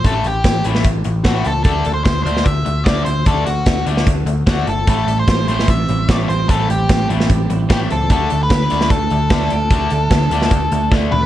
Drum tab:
HH |x-x-x-x-x-x-x-x-|x-x-x-x-x-x-x-x-|x-x-x-x-x-x-x-x-|x-x-x-x-x-x-x-x-|
SD |----o--o----o---|----o--o----o---|----o--o----o---|----o--o----o---|
FT |----------------|----------------|----------------|----------------|
BD |o---o---o---o---|o---o---o---o---|o---o---o---o---|o---o---o---o---|

HH |x-x-x-x-x-x-x-x-|x-x-x-x-x-x-x-x-|x-x-x-x-x-x-----|
SD |----o--o----o---|----o--o----o---|----o--o----o---|
FT |----------------|----------------|--------------o-|
BD |o---o---o---o---|o---o---o---o---|o---o---o---o---|